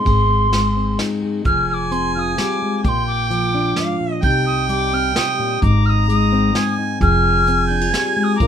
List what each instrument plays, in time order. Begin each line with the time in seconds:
Already playing: steel-string acoustic guitar G#3 C4, tin whistle C6
0.05 upright bass G#1, steel-string acoustic guitar G#2 G#4, kick, ride
0.29 steel-string acoustic guitar C4
0.51 steel-string acoustic guitar G#3, snare, ride
0.77 steel-string acoustic guitar C4
0.99 steel-string acoustic guitar D#4, snare, ride
1.23 steel-string acoustic guitar G#4
1.45 upright bass F1, steel-string acoustic guitar F3 G#4, harmonica G#5, tin whistle F6, kick, closed hi-hat
1.69 tin whistle F6
1.73 tin whistle D6
1.91 steel-string acoustic guitar C4, tin whistle C6, closed hi-hat
2.15 steel-string acoustic guitar F4, tin whistle F6
2.19 tin whistle D#6
2.38 steel-string acoustic guitar G3, tin whistle D6, snare, closed hi-hat
2.62 steel-string acoustic guitar G#3
2.77 harmonica G#5
2.84 upright bass A#1, steel-string acoustic guitar A#2 F4, harmonica G5, tin whistle D6, kick, closed hi-hat
2.88 tin whistle C6
3.07 tin whistle D6
3.30 steel-string acoustic guitar F3, tin whistle D6, closed hi-hat
3.55 steel-string acoustic guitar D4
3.76 steel-string acoustic guitar G#2, harmonica F5, snare, closed hi-hat
4.00 steel-string acoustic guitar A#2
4.12 harmonica D#5
4.22 upright bass C2, steel-string acoustic guitar C3 D#4, harmonica G5, tin whistle G6, kick, closed hi-hat
4.46 tin whistle D#6
4.69 steel-string acoustic guitar G3, tin whistle D6, closed hi-hat
4.93 steel-string acoustic guitar C4, tin whistle F6
5.16 steel-string acoustic guitar C3, tin whistle D#6, snare, closed hi-hat
5.39 steel-string acoustic guitar A#2
5.62 upright bass G#1, steel-string acoustic guitar G#2 D#4, harmonica A#5, tin whistle D6, kick, closed hi-hat
5.86 tin whistle D#6 F6
6.08 steel-string acoustic guitar G#3, tin whistle D#6, closed hi-hat
6.32 steel-string acoustic guitar C4
6.55 harmonica G#5, snare, closed hi-hat
6.79 steel-string acoustic guitar D#4
7.00 upright bass F1, steel-string acoustic guitar F3 G#4, harmonica G#5, tin whistle F6, kick, closed hi-hat
7.47 steel-string acoustic guitar C4, closed hi-hat
7.67 steel-string acoustic guitar D4, tin whistle G6
7.82 steel-string acoustic guitar F4
7.89 steel-string acoustic guitar G3, tin whistle G#6
7.94 snare, closed hi-hat
8.17 steel-string acoustic guitar G#3
8.23 tin whistle D#6
8.35 harmonica A#5, tin whistle D6
8.40 upright bass A#1, steel-string acoustic guitar A#2 F3 D4 F4 A#4, kick, closed hi-hat